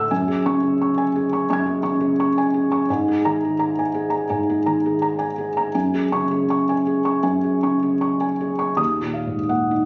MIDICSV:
0, 0, Header, 1, 2, 480
1, 0, Start_track
1, 0, Key_signature, 6, "major"
1, 0, Tempo, 695249
1, 71, Time_signature, 4, 2, 24, 8
1, 2952, Tempo, 732601
1, 3912, Tempo, 760456
1, 5832, Tempo, 709220
1, 6556, End_track
2, 0, Start_track
2, 0, Title_t, "Felt piano"
2, 0, Program_c, 0, 0
2, 0, Control_c, 0, 64, 127
2, 0, Note_on_c, 0, 38, 51
2, 0, Note_on_c, 0, 45, 49
2, 0, Note_on_c, 0, 69, 55
2, 0, Note_on_c, 0, 78, 53
2, 0, Note_on_c, 0, 88, 61
2, 70, Note_off_c, 0, 88, 0
2, 75, Note_on_c, 0, 80, 60
2, 76, Note_on_c, 0, 42, 64
2, 84, Control_c, 0, 64, 0
2, 86, Note_off_c, 0, 45, 0
2, 90, Note_off_c, 0, 38, 0
2, 90, Note_off_c, 0, 69, 0
2, 90, Note_off_c, 0, 78, 0
2, 192, Note_on_c, 0, 68, 55
2, 202, Control_c, 0, 64, 127
2, 262, Note_off_c, 0, 80, 0
2, 316, Note_on_c, 0, 49, 50
2, 317, Note_on_c, 0, 85, 72
2, 382, Note_off_c, 0, 68, 0
2, 432, Note_on_c, 0, 68, 51
2, 505, Note_off_c, 0, 85, 0
2, 563, Note_on_c, 0, 85, 51
2, 622, Note_off_c, 0, 68, 0
2, 675, Note_on_c, 0, 80, 59
2, 697, Note_off_c, 0, 49, 0
2, 748, Note_off_c, 0, 85, 0
2, 798, Note_on_c, 0, 68, 57
2, 864, Note_off_c, 0, 80, 0
2, 918, Note_on_c, 0, 85, 53
2, 985, Note_off_c, 0, 68, 0
2, 1004, Note_off_c, 0, 42, 0
2, 1024, Note_off_c, 0, 85, 0
2, 1034, Note_on_c, 0, 85, 48
2, 1036, Note_on_c, 0, 42, 56
2, 1036, Note_on_c, 0, 80, 52
2, 1057, Note_on_c, 0, 92, 42
2, 1148, Note_on_c, 0, 68, 52
2, 1224, Note_off_c, 0, 80, 0
2, 1254, Note_off_c, 0, 85, 0
2, 1264, Note_on_c, 0, 85, 59
2, 1267, Note_on_c, 0, 49, 54
2, 1340, Note_off_c, 0, 68, 0
2, 1384, Note_on_c, 0, 68, 55
2, 1458, Note_off_c, 0, 85, 0
2, 1518, Note_on_c, 0, 85, 62
2, 1578, Note_off_c, 0, 68, 0
2, 1642, Note_on_c, 0, 80, 61
2, 1651, Note_off_c, 0, 49, 0
2, 1705, Note_off_c, 0, 85, 0
2, 1753, Note_on_c, 0, 68, 50
2, 1827, Note_off_c, 0, 80, 0
2, 1876, Note_on_c, 0, 85, 56
2, 1944, Note_off_c, 0, 68, 0
2, 1965, Note_off_c, 0, 42, 0
2, 1976, Note_off_c, 0, 92, 0
2, 1993, Note_off_c, 0, 85, 0
2, 2000, Control_c, 0, 64, 0
2, 2001, Note_on_c, 0, 44, 61
2, 2005, Note_on_c, 0, 80, 53
2, 2126, Note_on_c, 0, 68, 54
2, 2137, Control_c, 0, 64, 127
2, 2191, Note_off_c, 0, 80, 0
2, 2245, Note_on_c, 0, 82, 73
2, 2246, Note_on_c, 0, 51, 50
2, 2312, Note_off_c, 0, 68, 0
2, 2380, Note_on_c, 0, 68, 45
2, 2431, Note_off_c, 0, 82, 0
2, 2481, Note_on_c, 0, 82, 57
2, 2558, Note_off_c, 0, 68, 0
2, 2615, Note_on_c, 0, 80, 54
2, 2622, Note_off_c, 0, 51, 0
2, 2668, Note_off_c, 0, 82, 0
2, 2723, Note_on_c, 0, 68, 51
2, 2795, Note_off_c, 0, 80, 0
2, 2830, Note_on_c, 0, 82, 50
2, 2910, Note_off_c, 0, 68, 0
2, 2932, Note_off_c, 0, 44, 0
2, 2966, Note_on_c, 0, 80, 50
2, 2969, Note_on_c, 0, 44, 52
2, 3023, Note_off_c, 0, 82, 0
2, 3096, Note_on_c, 0, 68, 47
2, 3148, Note_off_c, 0, 80, 0
2, 3206, Note_on_c, 0, 82, 55
2, 3208, Note_on_c, 0, 51, 45
2, 3273, Note_off_c, 0, 68, 0
2, 3333, Note_on_c, 0, 68, 49
2, 3389, Note_off_c, 0, 82, 0
2, 3439, Note_on_c, 0, 82, 55
2, 3513, Note_off_c, 0, 68, 0
2, 3549, Note_on_c, 0, 80, 51
2, 3583, Note_off_c, 0, 51, 0
2, 3627, Note_off_c, 0, 82, 0
2, 3675, Note_on_c, 0, 68, 44
2, 3742, Note_off_c, 0, 80, 0
2, 3799, Note_on_c, 0, 82, 51
2, 3867, Note_off_c, 0, 68, 0
2, 3895, Note_off_c, 0, 44, 0
2, 3916, Note_on_c, 0, 42, 49
2, 3916, Note_on_c, 0, 80, 49
2, 3917, Note_off_c, 0, 82, 0
2, 3923, Control_c, 0, 64, 0
2, 4024, Control_c, 0, 64, 127
2, 4038, Note_on_c, 0, 68, 44
2, 4106, Note_off_c, 0, 80, 0
2, 4150, Note_on_c, 0, 49, 40
2, 4154, Note_on_c, 0, 85, 64
2, 4229, Note_off_c, 0, 68, 0
2, 4271, Note_on_c, 0, 68, 45
2, 4347, Note_off_c, 0, 85, 0
2, 4393, Note_on_c, 0, 85, 45
2, 4466, Note_off_c, 0, 68, 0
2, 4512, Note_on_c, 0, 80, 47
2, 4539, Note_off_c, 0, 49, 0
2, 4587, Note_off_c, 0, 85, 0
2, 4623, Note_on_c, 0, 68, 46
2, 4706, Note_off_c, 0, 80, 0
2, 4739, Note_on_c, 0, 85, 48
2, 4821, Note_off_c, 0, 68, 0
2, 4843, Note_off_c, 0, 42, 0
2, 4853, Note_on_c, 0, 42, 51
2, 4855, Note_on_c, 0, 80, 51
2, 4940, Note_off_c, 0, 85, 0
2, 4982, Note_on_c, 0, 68, 44
2, 5058, Note_off_c, 0, 80, 0
2, 5104, Note_on_c, 0, 49, 43
2, 5105, Note_on_c, 0, 85, 50
2, 5183, Note_off_c, 0, 68, 0
2, 5228, Note_on_c, 0, 68, 47
2, 5305, Note_off_c, 0, 85, 0
2, 5345, Note_on_c, 0, 85, 50
2, 5426, Note_off_c, 0, 68, 0
2, 5468, Note_on_c, 0, 80, 46
2, 5496, Note_off_c, 0, 49, 0
2, 5544, Note_off_c, 0, 85, 0
2, 5595, Note_on_c, 0, 68, 43
2, 5666, Note_off_c, 0, 80, 0
2, 5709, Note_on_c, 0, 85, 50
2, 5785, Note_off_c, 0, 68, 0
2, 5797, Note_off_c, 0, 42, 0
2, 5821, Note_on_c, 0, 39, 44
2, 5823, Note_on_c, 0, 87, 52
2, 5829, Note_off_c, 0, 85, 0
2, 5846, Control_c, 0, 64, 0
2, 5973, Control_c, 0, 64, 127
2, 5986, Note_on_c, 0, 46, 36
2, 6071, Note_on_c, 0, 77, 36
2, 6160, Note_on_c, 0, 44, 35
2, 6215, Note_off_c, 0, 87, 0
2, 6248, Note_off_c, 0, 46, 0
2, 6307, Note_on_c, 0, 46, 36
2, 6312, Note_on_c, 0, 78, 42
2, 6318, Note_off_c, 0, 44, 0
2, 6457, Note_off_c, 0, 77, 0
2, 6459, Note_on_c, 0, 63, 38
2, 6556, Note_off_c, 0, 39, 0
2, 6556, Note_off_c, 0, 46, 0
2, 6556, Note_off_c, 0, 63, 0
2, 6556, Note_off_c, 0, 78, 0
2, 6556, End_track
0, 0, End_of_file